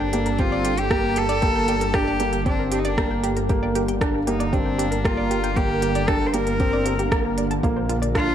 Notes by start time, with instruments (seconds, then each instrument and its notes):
Already playing: detuned saw bass G1, analog synth pad D3 A#3 C4 G4 A4 C5, cello D4
0.00 synth arpeggio sound G5
0.13 felt piano A#3, synth arpeggio sound G4, closed hi-hat
0.26 synth arpeggio sound A#4, closed hi-hat
0.39 felt piano C4, cello F4, synth arpeggio sound G4, kick, closed hi-hat
0.52 synth arpeggio sound D5
0.65 synth arpeggio sound G4, closed hi-hat
0.78 cello G4, synth arpeggio sound G5, closed hi-hat
0.91 felt piano A#3, synth arpeggio sound G4, kick, cross-stick, closed hi-hat
1.04 synth arpeggio sound A#4
1.16 synth arpeggio sound G4, cello A4, closed hi-hat
1.29 synth arpeggio sound D5, closed hi-hat
1.42 felt piano A#3, synth arpeggio sound G4, kick, closed hi-hat
1.55 synth arpeggio sound G5
1.68 synth arpeggio sound G4, closed hi-hat
1.81 synth arpeggio sound A#4, closed hi-hat
1.94 felt piano D4, synth arpeggio sound G4, cello G4, kick, cross-stick, closed hi-hat
2.07 synth arpeggio sound D5
2.20 felt piano A#3, synth arpeggio sound G4, closed hi-hat
2.33 synth arpeggio sound G5, closed hi-hat
2.46 felt piano C4, cello D4, synth arpeggio sound G4, kick, closed hi-hat
2.59 synth arpeggio sound A#4
2.72 cello D4, synth arpeggio sound G4, closed hi-hat
2.79 cello D#4
2.85 cello D4, synth arpeggio sound D5, closed hi-hat
2.98 felt piano A#3, synth arpeggio sound G4, kick, cross-stick, closed hi-hat
3.11 synth arpeggio sound G5
3.24 synth arpeggio sound G4, closed hi-hat
3.37 synth arpeggio sound A#4, closed hi-hat
3.49 felt piano A#3, synth arpeggio sound G4, kick, closed hi-hat
3.63 synth arpeggio sound D5
3.75 synth arpeggio sound G4, analog synth pad A#4, closed hi-hat
3.88 synth arpeggio sound G5, closed hi-hat
4.01 felt piano D4, synth arpeggio sound G4, kick, cross-stick, closed hi-hat
4.14 synth arpeggio sound A#4
4.27 felt piano A#3, cello D#4, synth arpeggio sound G4, closed hi-hat
4.40 synth arpeggio sound D5, closed hi-hat
4.53 felt piano C4, cello D4, synth arpeggio sound G4, kick, closed hi-hat
4.66 synth arpeggio sound G5
4.78 synth arpeggio sound G4, closed hi-hat
4.91 synth arpeggio sound A#4, closed hi-hat
5.05 felt piano A#3, cello F4, synth arpeggio sound G4, kick, cross-stick, closed hi-hat
5.17 synth arpeggio sound D5
5.31 synth arpeggio sound G4, closed hi-hat
5.44 synth arpeggio sound G5, closed hi-hat
5.56 felt piano A#3, synth arpeggio sound G4, cello G4, kick, closed hi-hat
5.70 synth arpeggio sound A#4
5.82 synth arpeggio sound G4, closed hi-hat
5.95 synth arpeggio sound D5, closed hi-hat
6.08 felt piano D4, synth arpeggio sound G4, cello A4, kick, cross-stick, closed hi-hat
6.21 synth arpeggio sound G5
6.27 cello C5
6.33 felt piano A#3, synth arpeggio sound G4, cello A#4, closed hi-hat
6.47 synth arpeggio sound A#4, closed hi-hat
6.60 felt piano C4, synth arpeggio sound G4, kick, closed hi-hat
6.73 synth arpeggio sound D5
6.86 synth arpeggio sound G4, closed hi-hat
6.99 synth arpeggio sound G4, closed hi-hat
7.12 felt piano A#3, synth arpeggio sound A#4, kick, cross-stick, closed hi-hat
7.25 synth arpeggio sound A#4
7.38 synth arpeggio sound D5, closed hi-hat
7.51 synth arpeggio sound A5, closed hi-hat
7.63 detuned saw bass A#1, felt piano A#3, synth arpeggio sound F4, kick, closed hi-hat
7.76 synth arpeggio sound C5
7.89 synth arpeggio sound F4, analog synth pad F4, closed hi-hat
8.02 synth arpeggio sound D5, closed hi-hat
8.11 analog synth pad C5
8.15 felt piano D4, synth arpeggio sound F4, cello F4, kick, cross-stick, closed hi-hat
8.28 synth arpeggio sound F5